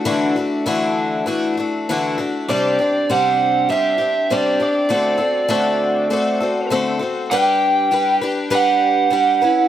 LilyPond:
<<
  \new Staff \with { instrumentName = "Lead electric guitar" } { \time 4/4 \key d \mixolydian \tempo 4 = 99 r1 | d''4 fis''4 e''4 d''8 d''8~ | d''2. r4 | \key g \lydian g''4. r8 fis''2 | }
  \new Staff \with { instrumentName = "Twelve-string acoustic guitar" } { \time 4/4 \key d \mixolydian <d e a d' fis'>8 <a d' fis'>8 <d e a d' fis'>4 <e a d' fis'>8 <a d' fis'>8 <d e a d' fis'>8 <a d' fis'>8 | <c g c' d' g'>8 <c' d' g'>8 <c g c' d' g'>4 <g c' d' g'>8 <c' d' g'>8 <c g c' d' g'>8 <c' d' g'>8 | <d a c' fis' a'>8 <c' fis' a'>8 <d a c' fis' a'>4 <a c' fis' a'>8 <c' fis' a'>8 <d a c' fis' a'>8 <c' fis' a'>8 | \key g \lydian <g d' g' b'>4 <g d' g' b'>8 <d' g' b'>8 <g d' g' b'>4 <g d' g' b'>8 <cis' e' b'>8 | }
>>